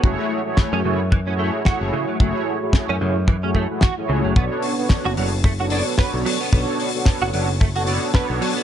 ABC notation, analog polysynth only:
X:1
M:4/4
L:1/16
Q:"Swing 16ths" 1/4=111
K:Bdor
V:1 name="Analog polysynth"
[A,EFGc]3 [A,EFGc]3 [A,EFGc] z2 [A,EFGc]3 [A,EFGc]4 | [A,EFGc]3 [A,EFGc]3 [A,EFGc] z2 [A,EFGc]2 [A,EFGf] z [A,EFGc]3 | [B,DFAc]3 [B,DFAc]3 [B,DFAc] z2 [B,DFAc]3 [B,DFc]4 | [B,DFAc]3 [B,DFAc]3 [B,DFAc] z2 [B,DFAc]3 [B,DFAc]4 |]